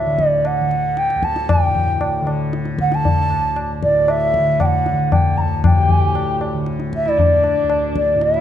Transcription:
0.00 1.15 D2 medium
0.00 1.68 A2 medium
0.00 0.06 D3 medium
0.00 0.27 E5 medium
0.06 0.61 D3 medium
0.18 tabla ke medium
0.27 0.48 D5 medium
0.45 0.99 F#5 medium
0.45 tabla na medium
0.61 2.21 D3 medium
0.71 tabla te medium
0.97 1.25 G5 medium
0.97 tabla te medium
1.10 tabla te medium
1.15 3.29 D2 medium
1.23 1.51 A5 loud
1.23 tabla ke medium
1.36 tabla te medium
1.49 2.27 G5 medium
1.49 tabla na medium
1.49 tabla ge medium
1.68 3.83 A2 medium
1.75 tabla ge medium
2.01 tabla na medium
2.21 2.76 D3 medium
2.27 tabla na medium
2.53 tabla te medium
2.65 tabla te medium
2.76 4.39 D3 medium
2.76 tabla ke medium
2.81 2.96 F#5 medium
2.92 3.71 A5 loud
2.92 tabla te medium
3.05 tabla tin medium
3.05 tabla ge medium
3.30 5.44 D2 medium
3.30 tabla na medium
3.56 tabla na medium
3.83 5.98 A2 medium
3.83 4.11 D5 medium
3.83 tabla ke medium
4.08 4.62 E5 medium
4.08 tabla na medium
4.34 tabla ke medium
4.39 4.92 D3 medium
4.60 4.66 G5 medium
4.60 tabla na medium
4.60 tabla ge medium
4.65 5.14 F#5 medium
4.86 tabla te medium
4.92 6.54 D3 medium
5.12 5.38 G5 medium
5.12 tabla na medium
5.12 tabla ge medium
5.37 5.63 A5 medium
5.37 5.42 A#5 medium
5.37 tabla ge soft
5.45 7.62 D2 medium
5.64 6.38 G5 medium
5.64 tabla na loud
5.64 tabla ge medium
5.77 6.51 G4 medium
5.89 tabla ge medium
5.98 8.15 A2 medium
6.15 tabla na medium
6.41 tabla na medium
6.54 7.07 D3 medium
6.66 tabla te medium
6.80 tabla te medium
6.93 7.10 E5 medium
6.93 tabla ke medium
7.06 8.41 D3 medium
7.06 7.20 E4 medium
7.06 7.84 D5 medium
7.06 tabla te medium
7.18 8.21 D4 medium
7.18 tabla tin medium
7.18 tabla ge medium
7.44 tabla na medium
7.63 8.41 D2 medium
7.70 tabla na medium
7.96 8.24 D5 medium
7.96 tabla ke medium
8.15 8.41 A2 medium
8.21 8.41 E5 medium
8.21 tabla te medium
8.34 8.41 E4 medium
8.34 tabla te medium

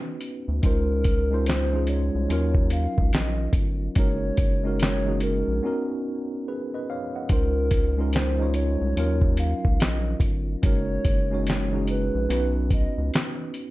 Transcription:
0.00 0.32 B3 medium
0.00 0.32 C#4 medium
0.00 0.33 D#4 medium
0.00 0.33 F#4 medium
0.00 0.34 B4 medium
0.21 closed hi-hat medium
0.48 0.61 D2 medium
0.62 2.10 C#2 loud
0.62 1.01 G#3 medium
0.62 1.02 C#4 medium
0.62 1.02 D#4 medium
0.62 1.03 F4 medium
0.62 1.49 A#4 loud
0.62 1.03 C5 medium
0.62 kick loud
0.62 closed hi-hat medium
1.04 kick medium
1.04 closed hi-hat medium
1.31 1.52 G#3 medium
1.31 1.52 C#4 medium
1.31 1.53 D#4 medium
1.31 1.53 F4 medium
1.31 1.53 C5 medium
1.46 1.91 C5 medium
1.46 snare medium
1.46 closed hi-hat medium
1.72 2.30 G#3 medium
1.72 2.28 C#4 medium
1.72 2.29 D#4 medium
1.72 2.30 F4 medium
1.72 2.31 G#4 medium
1.87 2.68 C#5 medium
1.87 closed hi-hat medium
2.15 2.28 C2 medium
2.29 2.87 D#2 loud
2.29 3.65 F#3 medium
2.29 3.65 C#4 medium
2.29 3.65 D#4 medium
2.29 3.66 F4 medium
2.29 3.66 A#4 medium
2.29 closed hi-hat medium
2.55 kick medium
2.70 3.10 F5 medium
2.70 closed hi-hat medium
2.98 3.11 C#2 medium
2.98 kick medium
3.13 3.48 A#1 medium
3.13 3.51 D#5 medium
3.13 snare loud
3.13 closed hi-hat medium
3.53 3.89 G1 medium
3.53 kick medium
3.53 closed hi-hat medium
3.95 4.31 F#1 loud
3.95 4.35 G#3 medium
3.95 4.35 C#4 medium
3.95 4.36 D#4 medium
3.95 4.36 F#4 medium
3.95 4.76 C#5 loud
3.95 kick loud
3.95 closed hi-hat medium
4.00 4.37 A#4 medium
4.37 5.44 F#1 loud
4.37 kick medium
4.37 closed hi-hat medium
4.63 4.85 G#3 medium
4.63 4.85 C#4 medium
4.63 4.85 D#4 medium
4.63 4.86 F#4 medium
4.63 4.86 A#4 medium
4.80 5.18 C#5 medium
4.80 snare medium
4.80 closed hi-hat medium
5.05 5.63 G#3 medium
5.05 5.63 C#4 medium
5.05 5.64 D#4 medium
5.05 5.64 F#4 medium
5.05 5.65 G#4 medium
5.20 5.86 A#4 medium
5.20 closed hi-hat medium
5.48 5.61 A#1 medium
5.63 6.98 B3 medium
5.63 6.99 C#4 medium
5.63 6.99 D#4 medium
5.63 7.00 F#4 medium
5.63 6.48 A#4 medium
6.48 6.72 G#4 medium
6.48 6.72 B4 medium
6.74 6.89 B4 medium
6.74 6.88 D#5 medium
6.90 7.14 C#5 medium
6.90 7.14 F5 medium
7.16 7.55 D#5 soft
7.16 7.55 F#5 medium
7.29 8.77 C#2 loud
7.29 7.68 G#3 medium
7.29 7.68 C#4 medium
7.29 7.69 D#4 medium
7.29 7.69 F4 medium
7.29 8.10 A#4 loud
7.29 7.70 C5 medium
7.29 kick loud
7.29 closed hi-hat medium
7.71 kick medium
7.71 closed hi-hat medium
7.97 8.18 G#3 medium
7.97 8.19 C#4 medium
7.97 8.19 D#4 medium
7.97 8.20 F4 medium
7.97 8.20 A#4 medium
8.13 8.51 C5 medium
8.13 snare medium
8.13 closed hi-hat medium
8.39 8.96 G#3 medium
8.39 8.96 C#4 medium
8.39 8.96 D#4 medium
8.39 8.97 F4 medium
8.39 8.98 C#5 medium
8.54 9.35 C#5 medium
8.54 closed hi-hat medium
8.81 8.94 C2 medium
8.96 9.54 D#2 loud
8.96 10.31 F#3 medium
8.96 10.32 C#4 medium
8.96 10.32 D#4 medium
8.96 10.33 F4 medium
8.96 10.33 A#4 medium
8.96 closed hi-hat medium
9.21 kick medium
9.37 9.83 F5 medium
9.37 closed hi-hat medium
9.65 9.78 C#2 medium
9.65 kick medium
9.80 10.15 A#1 medium
9.80 10.18 D#5 medium
9.80 snare loud
9.80 closed hi-hat medium
10.20 10.56 G1 medium
10.20 kick medium
10.20 closed hi-hat medium
10.62 10.98 F#1 loud
10.62 11.01 G#3 medium
10.62 11.02 C#4 medium
10.62 11.02 D#4 medium
10.62 11.03 F#4 medium
10.62 11.03 A#4 medium
10.62 11.43 C#5 loud
10.62 kick loud
10.62 closed hi-hat medium
11.05 12.10 F#1 loud
11.05 kick medium
11.05 closed hi-hat medium
11.31 11.52 G#3 medium
11.31 11.52 C#4 medium
11.31 11.52 D#4 medium
11.31 11.53 F#4 medium
11.31 11.53 C#5 medium
11.47 11.85 C#5 medium
11.47 snare medium
11.47 closed hi-hat medium
11.72 12.29 G#3 medium
11.72 12.29 C#4 medium
11.72 12.29 D#4 medium
11.72 12.30 F#4 medium
11.72 12.31 G#4 medium
11.87 12.69 B4 medium
11.87 closed hi-hat medium
12.15 12.27 A#1 medium
12.29 12.87 B1 loud
12.29 13.65 B3 medium
12.29 13.65 C#4 medium
12.29 13.66 D#4 medium
12.29 13.66 F#4 medium
12.29 13.67 B4 medium
12.29 closed hi-hat medium
12.71 13.10 D#5 medium
12.71 kick medium
12.71 closed hi-hat medium
12.98 13.11 C#2 medium
13.14 snare loud
13.14 closed hi-hat medium
13.54 closed hi-hat medium

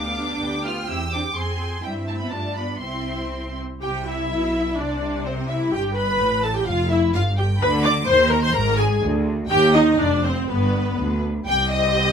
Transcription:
0.00 0.36 D2 medium
0.00 0.16 B3 soft
0.00 0.65 D4 medium
0.00 0.16 G4 soft
0.00 0.40 F5 medium
0.00 0.64 D6 medium
0.17 0.39 B3 soft
0.17 0.39 G4 soft
0.40 0.82 D2 medium
0.40 0.62 B3 soft
0.40 0.63 G4 soft
0.40 1.34 G5 medium
0.63 0.87 B3 soft
0.63 0.89 F4 medium
0.63 0.85 G4 soft
0.63 0.89 F6 medium
0.87 1.30 E2 medium
0.87 1.10 C4 soft
0.87 0.97 E4 medium
0.87 1.10 G4 soft
0.87 1.12 E6 medium
1.11 1.34 C4 soft
1.11 1.21 D4 medium
1.11 1.35 G4 soft
1.11 1.36 D6 medium
1.35 1.78 F2 medium
1.35 1.59 C4 soft
1.35 1.84 C4 medium
1.35 1.58 G#4 soft
1.35 1.83 G#5 medium
1.35 1.84 C6 medium
1.60 1.83 C4 soft
1.60 1.84 G#4 soft
1.83 2.29 G2 medium
1.83 1.93 G3 medium
1.83 2.29 C4 medium
1.83 2.30 E4 soft
1.83 2.32 E5 medium
1.83 1.92 G5 medium
2.07 2.20 A3 soft
2.07 2.12 A5 medium
2.19 2.33 B3 medium
2.19 2.32 B5 medium
2.31 2.81 G2 soft
2.31 2.57 A3 soft
2.31 2.82 D4 soft
2.31 2.82 F4 soft
2.31 2.82 D5 soft
2.31 2.57 A5 medium
2.56 2.83 B3 soft
2.56 2.82 B5 medium
2.80 3.60 C2 medium
2.80 3.57 C4 medium
2.80 3.61 C4 soft
2.80 3.63 E4 soft
2.80 3.56 E5 soft
2.80 3.55 C6 medium
3.82 4.27 C2 medium
3.82 4.27 C3 medium
3.82 4.05 G4 medium
3.82 3.90 G5 medium
3.82 4.06 G5 medium
4.05 4.77 E4 medium
4.05 4.76 E5 medium
4.05 4.79 E5 medium
4.30 4.78 B1 medium
4.30 4.79 B2 medium
4.77 5.73 C2 medium
4.77 5.73 C3 medium
4.77 5.26 D4 medium
4.77 5.25 D5 medium
4.77 5.26 D5 medium
5.25 5.49 C4 medium
5.25 5.33 C5 medium
5.25 5.50 C5 medium
5.48 5.73 E4 medium
5.48 5.56 E5 medium
5.48 5.73 E5 medium
5.72 6.19 G1 medium
5.72 6.19 G2 medium
5.72 5.97 G4 medium
5.72 5.96 G5 medium
5.72 5.81 G5 medium
5.97 6.43 B4 medium
5.97 6.44 B5 medium
5.97 6.43 B5 medium
6.20 6.67 A1 medium
6.20 6.67 A2 medium
6.43 6.56 A4 medium
6.43 6.56 A5 medium
6.54 6.69 G4 medium
6.54 6.67 G5 medium
6.66 7.13 F1 medium
6.66 7.14 F2 medium
6.66 6.91 F4 medium
6.66 6.90 F5 medium
6.90 7.14 E4 medium
6.90 7.14 E5 medium
6.90 6.99 E5 medium
7.14 7.60 G1 medium
7.14 7.61 G2 medium
7.14 7.23 F4 medium
7.14 7.37 F5 medium
7.14 7.22 F5 medium
7.37 7.46 G4 medium
7.37 7.45 G5 medium
7.37 7.60 G5 medium
7.60 7.99 D2 medium
7.60 7.99 D3 medium
7.60 7.69 B4 loud
7.60 7.83 B5 medium
7.60 7.84 B5 medium
7.82 7.92 D5 loud
7.82 8.06 D6 medium
7.82 7.92 D6 medium
8.06 8.46 D#2 medium
8.06 8.46 D#3 medium
8.06 8.30 C5 loud
8.06 8.30 C6 medium
8.30 8.43 A#4 loud
8.30 8.42 A#5 loud
8.30 8.42 A#5 medium
8.41 8.55 C5 medium
8.41 8.53 C6 medium
8.41 8.54 C6 medium
8.53 8.94 G#1 loud
8.53 8.94 G#2 medium
8.53 8.79 A#4 loud
8.53 8.78 A#5 medium
8.77 9.03 G#4 loud
8.77 8.85 G#5 medium
8.77 9.02 G#5 medium
9.01 9.41 D2 medium
9.01 9.42 D2 medium
9.49 9.90 D#2 loud
9.49 9.90 D#2 medium
9.49 9.73 G4 loud
9.49 9.71 G5 medium
9.49 9.72 G5 medium
9.72 9.99 D#4 loud
9.72 9.80 D#5 loud
9.72 9.98 D#5 medium
9.97 10.39 F1 medium
9.97 10.39 F2 medium
9.97 10.23 D4 loud
9.97 10.22 D5 medium
9.97 10.23 D5 medium
10.22 10.49 C4 medium
10.22 10.48 C5 medium
10.22 10.32 C5 medium
10.47 10.89 G1 medium
10.47 10.90 G2 medium
10.47 11.23 B3 medium
10.47 11.21 B4 medium
10.98 11.39 D2 medium
10.98 11.40 D2 medium
11.47 12.12 C2 medium
11.47 12.12 C4 medium
11.47 12.12 G4 medium
11.47 11.70 G5 loud
11.47 11.70 G5 medium
11.71 12.12 D#5 loud
11.71 12.12 D#5 medium

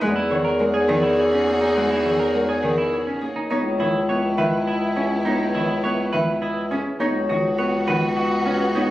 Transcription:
0.00 3.35 E2 medium
0.00 0.12 G#3 loud
0.00 3.32 D#4 medium
0.00 3.32 F#4 medium
0.00 3.32 G#4 medium
0.00 1.75 B4 loud
0.00 0.88 D#5 loud
0.00 3.33 E5 medium
0.00 3.04 F#5 loud
0.16 0.35 E4 medium
0.30 0.41 D#3 medium
0.30 1.17 C#5 medium
0.45 0.64 A#4 medium
0.60 0.71 G#3 medium
0.60 2.33 A#4 medium
0.74 0.93 G#4 loud
0.89 0.99 D#3 loud
0.89 2.62 D#5 medium
1.03 1.22 E4 medium
1.18 2.04 C#5 medium
1.32 1.51 C#4 medium
1.47 1.58 A#3 medium
1.47 3.20 G#4 medium
1.61 1.80 D#4 medium
1.76 1.87 G#3 medium
1.76 4.08 B4 medium
1.90 2.09 E4 medium
2.05 2.16 D#3 medium
2.05 2.92 C#5 medium
2.19 2.39 A#4 medium
2.34 2.45 G#3 medium
2.34 3.53 A#4 medium
2.49 2.68 G#4 medium
2.63 2.74 D#3 medium
2.63 3.53 D#5 medium
2.78 2.97 E4 medium
2.93 3.50 C#5 medium
3.07 3.26 C#4 medium
3.21 3.32 A#3 medium
3.21 4.95 G#4 medium
3.36 3.49 D#4 medium
3.50 6.85 C#2 medium
3.50 3.61 B3 medium
3.50 6.82 B3 medium
3.50 3.70 D#4 medium
3.50 6.82 E4 medium
3.50 5.25 C#5 medium
3.79 3.91 D#3 medium
3.79 3.99 E4 medium
3.79 4.66 D#5 medium
4.09 4.20 B3 medium
4.09 5.83 B4 medium
4.09 4.28 C#5 medium
4.38 4.49 D#3 medium
4.38 4.57 B4 medium
4.38 6.12 E5 medium
4.67 4.86 E4 medium
4.67 5.54 D#5 medium
4.96 5.07 C#4 medium
4.96 5.15 C#4 medium
4.96 6.70 G#4 medium
5.25 5.36 B3 medium
5.25 5.44 D#4 medium
5.25 6.99 C#5 medium
5.55 5.66 D#3 medium
5.55 5.74 E4 medium
5.55 6.41 D#5 medium
5.83 5.94 B3 medium
5.83 7.57 B4 medium
5.83 6.03 C#5 medium
6.13 6.24 D#3 medium
6.13 6.32 B4 medium
6.13 7.03 E5 medium
6.42 6.61 E4 medium
6.42 7.28 D#5 medium
6.71 6.82 C#4 medium
6.71 6.90 C#4 medium
6.71 8.45 G#4 medium
7.00 8.90 C#2 medium
7.00 7.11 B3 medium
7.00 8.90 B3 medium
7.00 7.19 D#4 medium
7.00 8.90 F#4 medium
7.00 8.74 C#5 medium
7.29 7.40 D#3 medium
7.29 7.48 F#4 medium
7.29 8.16 D#5 medium
7.58 7.69 B3 medium
7.58 8.90 B4 medium
7.58 7.77 C#5 medium
7.87 7.98 D#3 medium
7.87 8.07 B4 medium
7.87 8.90 F#5 medium
8.17 8.36 F#4 medium
8.17 8.90 D#5 medium
8.46 8.57 C#4 medium
8.46 8.65 C#4 medium
8.46 8.90 G#4 medium
8.75 8.86 B3 medium
8.75 8.90 D#4 loud
8.75 8.90 C#5 loud

